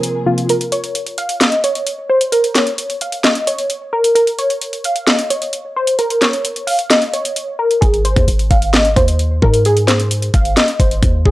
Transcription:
Already playing: C3 F3 A#3 C4 F4 G#4 A#4
0.03 closed hi-hat
0.26 C3 F3 A#3 C4 F4
0.38 closed hi-hat
0.49 A#4, closed hi-hat
0.61 closed hi-hat
0.72 C#5, closed hi-hat
0.84 closed hi-hat
0.95 closed hi-hat
1.07 closed hi-hat
1.18 F5, closed hi-hat
1.29 closed hi-hat
1.41 D#5, snare, clap, closed hi-hat
1.52 closed hi-hat
1.64 C#5, closed hi-hat
1.75 closed hi-hat
1.87 closed hi-hat
2.10 C5
2.21 closed hi-hat
2.32 A#4, closed hi-hat
2.44 closed hi-hat
2.55 C#5, snare, clap, closed hi-hat
2.67 closed hi-hat
2.78 closed hi-hat
2.90 closed hi-hat
3.01 F5, closed hi-hat
3.12 closed hi-hat
3.24 D#5, snare, clap, closed hi-hat
3.35 closed hi-hat
3.47 C#5, closed hi-hat
3.59 closed hi-hat
3.70 closed hi-hat
3.93 A#4
4.04 closed hi-hat
4.15 A#4, closed hi-hat
4.27 closed hi-hat
4.39 C#5, closed hi-hat
4.50 closed hi-hat
4.62 closed hi-hat
4.73 closed hi-hat
4.84 F5, closed hi-hat
4.96 closed hi-hat
5.07 D#5, snare, clap, closed hi-hat
5.19 closed hi-hat
5.30 C#5, closed hi-hat
5.42 closed hi-hat
5.53 closed hi-hat
5.76 C5
5.87 closed hi-hat
5.99 A#4, closed hi-hat
6.10 closed hi-hat
6.22 C#5, snare, clap, closed hi-hat
6.33 closed hi-hat
6.45 closed hi-hat
6.56 closed hi-hat
6.67 F5, open hi-hat
6.79 closed hi-hat
6.90 D#5, snare, clap, closed hi-hat
7.02 closed hi-hat
7.13 C#5, closed hi-hat
7.25 closed hi-hat
7.36 closed hi-hat
7.59 A#4
7.71 closed hi-hat
7.81 G#1 G#4, kick, closed hi-hat
7.94 closed hi-hat
8.05 C5, closed hi-hat
8.16 D#2, kick, closed hi-hat
8.28 G#1, closed hi-hat
8.39 closed hi-hat
8.51 G#1 F5, kick, closed hi-hat
8.62 closed hi-hat
8.73 D#5, snare, clap, closed hi-hat
8.85 closed hi-hat
8.96 D#2 C5, kick, closed hi-hat
9.08 closed hi-hat
9.19 closed hi-hat
9.42 G#2 A#4, kick
9.54 closed hi-hat
9.65 G#4, closed hi-hat
9.77 closed hi-hat
9.87 C5, snare, clap, closed hi-hat
10.00 closed hi-hat
10.11 closed hi-hat
10.22 closed hi-hat
10.34 G#1 F5, kick, closed hi-hat
10.45 closed hi-hat
10.57 D#5, snare, clap, closed hi-hat
10.68 closed hi-hat
10.80 G#1 C5, kick, closed hi-hat
10.91 closed hi-hat
11.03 D#2, kick, closed hi-hat
11.26 G#1 G#4, kick

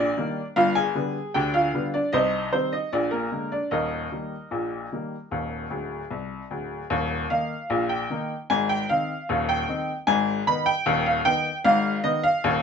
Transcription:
Already playing: A#1 A#2 D5
0.00 D4
0.17 D#3 G3 A#3
0.56 G1 G2 F4 F5
0.75 G#4 G#5
0.95 D3 G3 B3
1.34 D2 D3 G4 G5
1.54 F4 F5
1.74 D3 G3 B3
1.94 D4 D5
2.13 C2 C3 D#4 C5 D#5
2.53 D#3 G3 C4 C5
2.73 D#4 D#5
2.93 A#1 A#2 D4 D5
3.11 A#3 A#4
3.32 D3 G#3 A#3
3.52 D4 D5
3.71 D#1 D#2 D#4 A#4 D#5
4.12 D#3 G3 A#3
4.51 A#1 A#2
4.92 D#3 G3 A#3
5.31 D#1 D#2
5.70 D1 D2
6.11 C2
6.51 D1 D2
6.90 D#1 D#2
7.30 D#3 A#3 D#4 F5
7.70 A#1 A#2
7.89 G5
8.10 D#3 A#3 D#4
8.50 G#1 G#2 G#5
8.69 G5
8.89 D#3 C4 D#4 F5
9.29 D#1 D#2
9.49 G5
9.68 D#3 C4 D#4
10.07 G#1 G#2 G#5
10.47 D#3 B3 D#4 B5
10.66 G5
10.86 D#1 D#2
11.06 F5
11.25 D#3 B3 D#4 G5
11.64 G#1 G#2 F5
12.04 D#3 B3 D#4 D#5
12.24 F5
12.44 D#1 D#2

